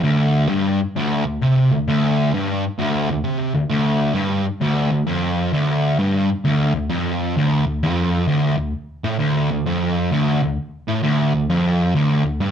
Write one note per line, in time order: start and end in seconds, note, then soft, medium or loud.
0.03 0.48 D2 loud
0.49 0.79 G2 medium
0.96 1.25 D2 loud
1.26 1.38 D2 medium
1.42 1.71 C3 loud
1.71 1.84 D2 medium
1.88 2.33 D2 loud
2.34 2.63 G2 medium
2.79 3.08 D2 loud
3.11 3.22 D2 medium
3.25 3.54 C3 loud
3.55 3.68 D2 medium
3.70 4.15 D2 loud
4.15 4.45 G2 loud
4.61 4.90 D2 loud
4.91 5.04 D2 medium
5.07 5.53 F2 loud
5.53 5.98 D2 loud
5.99 6.29 G2 loud
6.45 6.74 D2 loud
6.75 6.88 D2 medium
6.90 7.36 F2 loud
7.37 7.65 D2 loud
7.67 7.79 D2 medium
7.83 8.27 F2 medium
8.28 8.57 D2 loud
8.58 8.71 D2 medium
9.04 9.18 A2 medium
9.19 9.49 D2 loud
9.51 9.63 D2 medium
9.66 10.11 F2 medium
10.12 10.41 D2 loud
10.43 10.55 D2 medium
10.88 11.03 A2 medium
11.03 11.33 D2 loud
11.35 11.47 D2 medium
11.50 11.95 F2 loud
11.95 12.24 D2 medium
12.25 12.38 D2 medium
12.41 12.51 G2 medium